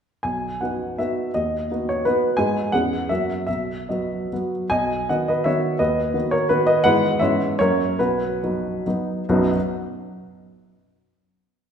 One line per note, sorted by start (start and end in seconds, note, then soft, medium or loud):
0.23 0.60 B1 soft
0.23 0.60 G#5 medium
0.61 0.95 B3 soft
0.61 0.95 D#4 soft
0.61 0.96 F#4 soft
0.61 0.98 F#5 medium
0.98 1.30 B3 soft
0.98 1.30 D#4 soft
0.98 1.31 F#4 soft
0.98 1.33 E5 medium
1.34 1.69 D#2 soft
1.34 1.87 D#5 medium
1.71 2.02 B3 soft
1.71 2.02 D#4 soft
1.71 2.03 F#4 soft
1.89 2.05 C#5 medium
2.05 2.35 B3 soft
2.05 2.36 D#4 soft
2.05 2.36 F#4 soft
2.05 2.38 B4 medium
2.37 2.71 G#2 medium
2.37 2.69 B3 soft
2.37 2.69 D#4 soft
2.37 2.69 G#4 soft
2.37 2.72 G#5 medium
2.72 3.09 E2 medium
2.72 3.06 B3 soft
2.72 3.07 C#4 soft
2.72 3.07 G#4 soft
2.72 3.10 F#5 medium
3.09 3.47 F#2 soft
3.09 3.44 A#3 soft
3.09 3.45 C#4 soft
3.09 3.45 F#4 soft
3.09 3.45 E5 medium
3.47 3.87 B1 soft
3.47 3.88 E5 medium
3.89 4.27 F#3 soft
3.89 4.28 B3 soft
3.89 4.28 F#4 soft
3.89 4.51 D#5 soft
4.33 4.67 F#3 soft
4.33 4.67 B3 soft
4.33 4.67 F#4 soft
4.70 5.07 B1 soft
4.70 5.06 D#5 medium
4.70 5.08 G#5 medium
5.09 5.43 D#3 soft
5.09 5.43 B3 soft
5.09 5.43 F#4 soft
5.09 5.27 D#5 medium
5.09 5.28 F#5 medium
5.28 5.46 B4 medium
5.28 5.46 D#5 medium
5.44 5.77 D#3 soft
5.44 5.77 B3 soft
5.44 5.77 F#4 soft
5.44 5.78 C#5 medium
5.44 5.79 E5 medium
5.79 6.14 D#2 soft
5.79 6.29 B4 medium
5.79 6.33 D#5 medium
6.14 6.46 D#3 soft
6.14 6.46 B3 soft
6.14 6.47 F#4 soft
6.31 6.49 A#4 medium
6.31 6.50 C#5 medium
6.49 6.81 D#3 soft
6.49 6.81 B3 soft
6.49 6.66 F#4 medium
6.49 6.66 B4 medium
6.67 6.83 B4 medium
6.67 6.84 D#5 medium
6.84 7.19 G#2 medium
6.84 7.17 E3 soft
6.84 7.17 B3 soft
6.84 7.17 E4 soft
6.84 7.18 B4 medium
6.84 7.20 F#5 loud
7.19 7.58 G#2 medium
7.19 7.55 E3 soft
7.19 7.55 B3 soft
7.19 7.55 C#4 soft
7.19 7.56 C#5 medium
7.19 7.58 E5 medium
7.59 7.98 F#2 medium
7.59 7.95 F#3 soft
7.59 7.96 A#3 soft
7.59 7.96 C#4 soft
7.59 7.97 A#4 medium
7.59 7.98 C#5 medium
7.99 8.40 B1 medium
7.99 8.82 F#4 medium
7.99 8.85 B4 medium
8.44 8.82 F#3 soft
8.44 8.82 B3 soft
8.44 8.82 D#4 soft
8.86 9.23 F#3 soft
8.86 9.24 B3 soft
8.86 9.24 D#4 soft
9.29 9.50 B1 medium
9.29 9.50 F#2 medium
9.29 9.50 F#3 medium
9.29 9.50 B3 medium
9.29 9.51 D#4 medium
9.29 9.50 F#4 medium